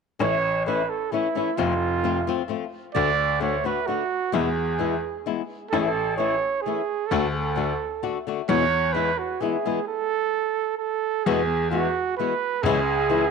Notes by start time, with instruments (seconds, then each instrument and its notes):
0.19 grand piano A1, nylon-string guitar A2 E3 A3 C#4 E4, trumpet C#5
0.66 nylon-string guitar E3 A3 C#4 E4, trumpet B4
0.90 trumpet A4
1.12 nylon-string guitar E3 A3 C#4 E4, trumpet E4
1.35 nylon-string guitar E3 A3 C#4 E4
1.56 grand piano F1, nylon-string guitar F2 C3 F3 A3 C4 F4, trumpet F4
2.04 nylon-string guitar F3 A3 C4 F4
2.27 nylon-string guitar F3 A3 C4 F4
2.48 nylon-string guitar F3 A3 C4 F4
2.94 grand piano D2, nylon-string guitar D3 A3 D4 F#4, trumpet D5
3.40 nylon-string guitar D3 A3 D4 F#4, trumpet C#5
3.64 nylon-string guitar D3 A3 D4 F#4, trumpet B4
3.87 nylon-string guitar D3 A3 D4 F#4, trumpet F#4
4.32 nylon-string guitar E2 B2 E3 G#3 B3 E4, grand piano E2, trumpet G#4
4.79 nylon-string guitar E3 G#3 B3 E4
5.26 nylon-string guitar E3 G#3 B3 E4
5.70 grand piano A1, nylon-string guitar A2 E3 A3 C#4 E4, trumpet A4
5.79 trumpet G#4
5.86 trumpet A4
6.17 nylon-string guitar E3 A3 C#4 E4, trumpet C#5
6.61 trumpet G#4
6.66 nylon-string guitar E3 A3 C#4 E4
7.06 trumpet A4
7.11 grand piano D2, nylon-string guitar D3 A3 D4 F#4
7.31 trumpet A4
7.56 nylon-string guitar D3 A3 D4 F#4
8.03 nylon-string guitar D3 A3 D4 F#4
8.27 nylon-string guitar D3 A3 D4 F#4
8.49 nylon-string guitar E2 B2 E3 G#3 B3 E4, grand piano E2, trumpet C#5
8.93 nylon-string guitar E3 G#3 B3 E4, trumpet B4
9.18 trumpet F#4
9.40 nylon-string guitar E3 G#3 B3 E4, trumpet G#4
9.65 nylon-string guitar E3 G#3 B3 E4
9.87 trumpet A4
10.78 trumpet A4
11.25 grand piano E2, nylon-string guitar E2 B2 E3 G#3 B3 F#4, trumpet G#4
11.71 nylon-string guitar E3 G#3 B3 F#4, trumpet F#4
12.17 nylon-string guitar E3 G#3 B3 F#4, trumpet B4
12.63 grand piano C#2, nylon-string guitar C#3 E3 G#3 C#4 E4, trumpet G#4
13.10 nylon-string guitar E3 G#3 C#4 E4